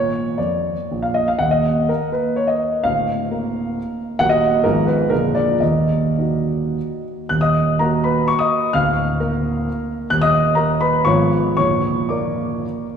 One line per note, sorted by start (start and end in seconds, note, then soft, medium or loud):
0.00 0.23 A#2 soft
0.00 0.28 A#3 soft
0.00 0.28 A#4 soft
0.00 0.38 C#5 medium
0.38 0.75 F2 soft
0.38 1.03 D5 medium
0.91 1.25 A#1 soft
1.02 1.15 F5 medium
1.14 1.27 D#5 medium
1.28 1.40 F5 medium
1.39 1.88 D#1 soft
1.39 1.87 D#2 soft
1.39 1.51 F#5 medium
1.51 1.89 D#5 medium
1.89 2.80 A#3 soft
1.89 2.14 A#4 medium
2.12 2.37 B4 medium
2.36 2.49 C#5 medium
2.47 2.83 D#5 medium
2.84 3.29 D1 soft
2.84 3.30 D2 soft
2.84 4.20 F5 medium
3.30 4.16 A#3 soft
3.30 4.17 A#4 soft
4.19 4.63 D#1 soft
4.19 4.63 D#2 medium
4.19 4.60 F#3 soft
4.19 4.61 A#3 soft
4.19 4.61 A#4 soft
4.19 4.30 F#5 loud
4.29 4.64 D#5 medium
4.64 5.10 G#1 soft
4.64 5.10 G#2 soft
4.64 5.08 F3 soft
4.64 5.08 B3 soft
4.64 5.08 G#4 soft
4.64 4.87 A#4 medium
4.87 5.11 B4 medium
5.10 5.59 A#0 soft
5.10 5.59 A#1 soft
5.10 5.57 F3 soft
5.10 5.57 D4 soft
5.10 5.58 G#4 soft
5.10 5.35 A#4 medium
5.35 5.61 D5 medium
5.60 6.16 D#1 soft
5.60 6.16 D#2 soft
5.60 7.03 D#5 medium
6.19 7.26 D#4 soft
6.19 7.26 F#4 soft
7.29 7.78 D#1 soft
7.29 7.78 D#2 soft
7.29 7.42 F#6 medium
7.41 7.77 D#5 medium
7.41 7.79 D#6 medium
7.79 8.70 A#3 soft
7.79 8.70 F#4 soft
7.79 8.03 A#4 medium
7.79 8.04 A#5 medium
8.04 8.27 B4 medium
8.04 8.28 B5 medium
8.28 8.39 C#6 medium
8.39 8.72 D#5 medium
8.39 8.73 D#6 medium
8.73 9.19 D1 soft
8.73 9.19 D2 medium
8.73 10.08 F5 medium
8.73 10.12 F6 medium
9.20 10.08 A#3 soft
9.20 10.08 A#4 medium
10.10 10.55 D#1 soft
10.10 10.55 D#2 medium
10.10 10.22 F#6 medium
10.21 10.55 D#5 medium
10.21 10.56 D#6 medium
10.55 11.01 A#3 soft
10.55 10.79 A#4 medium
10.55 10.80 A#5 medium
10.81 11.04 B4 medium
10.81 11.06 B5 medium
11.05 11.56 G#1 medium
11.05 11.56 G#2 soft
11.05 11.53 F3 soft
11.05 11.54 B3 soft
11.05 11.54 F4 soft
11.05 11.54 C#5 medium
11.05 11.55 C#6 medium
11.57 12.08 A#0 soft
11.57 12.08 A#1 soft
11.57 12.06 C#5 medium
11.57 12.09 C#6 medium
12.09 12.97 A#3 soft
12.09 12.97 A#4 soft
12.09 12.86 D5 soft
12.09 12.89 D6 medium